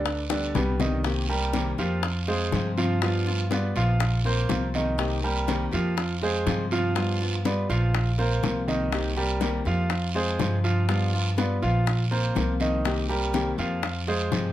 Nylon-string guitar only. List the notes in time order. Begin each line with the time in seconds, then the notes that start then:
0.05 muted nylon-string guitar stroke
0.30 G3 B3 G4
0.54 B2 D3 G3 B3 G4
1.04 C3 D#3 A#3 C4 G4
1.29 A#3 C4 G4
1.54 C3 D#3 A#3 C4 G4
1.79 A#3 C4 G4
2.03 muted nylon-string guitar stroke
2.28 G#3 C4 F4
2.53 C3 F3 C4 F4
3.02 G3 B3 F4
3.27 B3 F4
3.51 G3 B3 F4
3.76 B3 F4
4.00 muted nylon-string guitar stroke
4.24 A#3 C4 F4
4.49 F3 A#3 C4 F4
4.98 C3 D#3 A#3 C4 G4
5.22 A#3 C4 G4
5.47 C3 D#3 A#3 C4 G4
5.71 A#3 C4 G4
5.97 muted nylon-string guitar stroke
6.21 G#3 C4 F4
6.47 C3 F3 C4 F4
6.95 G3 B3 F4
7.21 B3 F4
7.45 G3 B3 F4
7.70 B3 F4
7.94 muted nylon-string guitar stroke
8.19 A#3 C4 F4
8.43 F3 A#3 C4 F4
8.92 C3 D#3 A#3 C4 G4
9.16 A#3 C4 G4
9.40 C3 D#3 A#3 C4 G4
9.65 A#3 C4 G4
9.90 muted nylon-string guitar stroke
10.14 G#3 C4 F4
10.40 C3 F3 C4 F4
10.88 G3 B3 F4
11.13 B3 F4
11.37 G3 B3 F4
11.62 B3 F4
11.86 muted nylon-string guitar stroke
12.11 A#3 C4 F4
12.35 F3 A#3 C4 F4
12.84 C3 D#3 A#3 C4 G4
13.09 A#3 C4 G4
13.33 C3 D#3 A#3 C4 G4
13.58 A#3 C4 G4
13.82 muted nylon-string guitar stroke
14.07 G#3 C4 F4
14.32 C3 F3 C4 F4